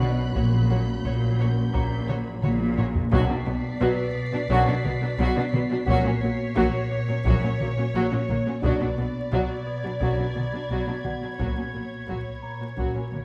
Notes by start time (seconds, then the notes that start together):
Already playing: B1 F#2 B2 F#3 D4 F#4 F#5 B5 C#6 F#6
0.01 F#3 B3 F#4 D5, taiko mid
0.34 A#1 A#2 F#3 C#4 F#4 C#5, taiko
0.70 F#3 A#3 F#4 C#5
0.94 G6
1.05 A#1 A#2 F#3 F#4 C#5, taiko
1.39 A#2 F#3 F#4 C#5
1.73 A#1 A#2 F#3 F#4 C#5 A#5, taiko
2.08 A#2 F#3 F#4 C#5, taiko mid
2.42 A#1 A#2 F#3 A#3 F#4 C#5, taiko mid
2.60 taiko high
2.77 F#3 A#3 F#4 C#5, taiko low-mid
2.95 taiko low
3.11 B1 F#2 B2 F#3 D4 F#4 D5 B6 C7, taiko
3.29 B2 F#3 D4
3.46 B1 B2 F#3 B3
3.81 B1 B2 F#3 F#4 B4, taiko
4.15 B2
4.33 B2 F#3 D4
4.49 B1 F#2 B2 F#3 D4 F#4, taiko
4.67 B2 F#3 D4
4.84 B1 B2 F#3 B3, taiko mid
5.01 B2 F#3 D4
5.18 B1 B2 F#3 B3 F#4
5.36 B2 F#3 D4
5.52 B1 B2 F#3 B3, taiko mid
5.70 B2 F#3 D4
5.87 A#1 F#2 A#2 F#3 C#4 F#4 C#5, taiko
6.05 A#2 F#3 C#4
6.22 A#1 A#2 F#3 A#3
6.56 A#1 A#2 F#3 F#4, taiko
6.91 A#2
7.08 A#2 F#3 C#4
7.25 A#1 F#2 A#2 F#3 C#4 F#4, taiko
7.43 A#2 F#3 C#4
7.60 A#1 A#2 F#3 A#3, taiko mid
7.77 A#2 F#3 C#4
7.95 A#1 A#2 F#3 A#3 F#4
8.11 A#2 F#3 C#4
8.29 A#1 A#2 F#3 A#3, taiko mid
8.46 A#2 F#3 C#4
8.62 B1 F#2 B2 F#3 D4 F#4 D5 B5, taiko
8.81 B2 F#3 D4
8.98 B1 B2 F#3 B3
9.32 B1 B2 F#3 F#4 G#6, taiko
9.67 B2
9.84 B2 F#3 D4
10.01 B1 F#2 B2 F#3 D4 F#4, taiko
10.18 B2 F#3 D4
10.35 B1 B2 F#3 B3, taiko mid
10.52 B2 F#3 D4
10.70 B1 B2 F#3 B3 F#4
10.87 B2 F#3 D4
11.04 B1 B2 F#3 B3 F#4 F#5, taiko mid
11.22 B2 F#3 D4
11.39 A#1 F#2 A#2 F#3 C#4 F#4 C#5, taiko
11.56 A#2 F#3 C#4
11.74 A#1 A#2 F#3 A#3
12.08 A#1 A#2 F#3 F#4, taiko
12.43 A#2 A#5
12.60 A#2 F#3 C#4
12.77 A#1 F#2 A#2 F#3 C#4 F#4, taiko
12.95 A#2 F#3 C#4
13.12 A#1 A#2 F#3 A#3, taiko mid